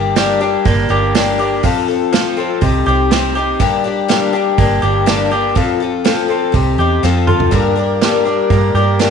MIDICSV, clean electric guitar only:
0, 0, Header, 1, 2, 480
1, 0, Start_track
1, 0, Key_signature, -2, "minor"
1, 0, Tempo, 490597
1, 1599, Time_signature, 4, 2, 24, 8
1, 8904, End_track
2, 0, Start_track
2, 0, Title_t, "Clean electric guitar"
2, 0, Program_c, 0, 27
2, 0, Note_on_c, 0, 43, 69
2, 163, Note_on_c, 0, 55, 62
2, 407, Note_on_c, 0, 62, 57
2, 643, Note_on_c, 0, 58, 68
2, 882, Note_off_c, 0, 43, 0
2, 885, Note_on_c, 0, 67, 77
2, 1113, Note_off_c, 0, 62, 0
2, 1125, Note_on_c, 0, 62, 62
2, 1353, Note_off_c, 0, 67, 0
2, 1360, Note_off_c, 0, 55, 0
2, 1365, Note_on_c, 0, 67, 64
2, 1598, Note_on_c, 0, 41, 72
2, 1600, Note_off_c, 0, 58, 0
2, 1602, Note_off_c, 0, 62, 0
2, 1602, Note_off_c, 0, 67, 0
2, 2079, Note_on_c, 0, 53, 65
2, 2322, Note_on_c, 0, 60, 60
2, 2558, Note_off_c, 0, 41, 0
2, 2558, Note_off_c, 0, 53, 0
2, 2560, Note_off_c, 0, 60, 0
2, 2561, Note_on_c, 0, 48, 62
2, 2803, Note_on_c, 0, 67, 72
2, 3041, Note_on_c, 0, 60, 63
2, 3271, Note_off_c, 0, 67, 0
2, 3283, Note_on_c, 0, 67, 68
2, 3519, Note_off_c, 0, 48, 0
2, 3519, Note_off_c, 0, 60, 0
2, 3520, Note_off_c, 0, 67, 0
2, 3521, Note_on_c, 0, 43, 79
2, 4006, Note_on_c, 0, 55, 74
2, 4244, Note_on_c, 0, 62, 59
2, 4485, Note_on_c, 0, 58, 62
2, 4717, Note_on_c, 0, 67, 69
2, 4719, Note_off_c, 0, 43, 0
2, 4946, Note_off_c, 0, 62, 0
2, 4957, Note_on_c, 0, 62, 62
2, 5190, Note_off_c, 0, 67, 0
2, 5201, Note_off_c, 0, 55, 0
2, 5202, Note_on_c, 0, 67, 71
2, 5437, Note_off_c, 0, 62, 0
2, 5440, Note_off_c, 0, 67, 0
2, 5440, Note_on_c, 0, 41, 74
2, 5441, Note_off_c, 0, 58, 0
2, 5925, Note_on_c, 0, 53, 68
2, 6161, Note_on_c, 0, 60, 58
2, 6399, Note_off_c, 0, 41, 0
2, 6399, Note_off_c, 0, 60, 0
2, 6401, Note_off_c, 0, 53, 0
2, 6404, Note_on_c, 0, 48, 62
2, 6643, Note_on_c, 0, 67, 68
2, 6880, Note_off_c, 0, 67, 0
2, 6881, Note_off_c, 0, 48, 0
2, 6882, Note_on_c, 0, 41, 64
2, 7116, Note_on_c, 0, 65, 67
2, 7354, Note_off_c, 0, 41, 0
2, 7357, Note_off_c, 0, 65, 0
2, 7358, Note_on_c, 0, 43, 73
2, 7841, Note_on_c, 0, 55, 71
2, 8073, Note_on_c, 0, 62, 54
2, 8318, Note_on_c, 0, 58, 61
2, 8559, Note_off_c, 0, 43, 0
2, 8559, Note_on_c, 0, 67, 72
2, 8789, Note_off_c, 0, 62, 0
2, 8801, Note_on_c, 0, 62, 61
2, 8904, Note_off_c, 0, 55, 0
2, 8904, Note_off_c, 0, 58, 0
2, 8904, Note_off_c, 0, 62, 0
2, 8904, Note_off_c, 0, 67, 0
2, 8904, End_track
0, 0, End_of_file